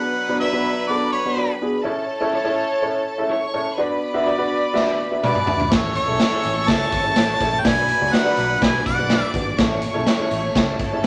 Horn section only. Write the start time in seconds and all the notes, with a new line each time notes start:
Already playing: F#3 D4 B4
1.86 A3 E4 C#5
3.79 B3 F#4 D5
5.74 E3 C#4 A4
7.66 F#3 D4 B4
9.61 A3 E4 C#5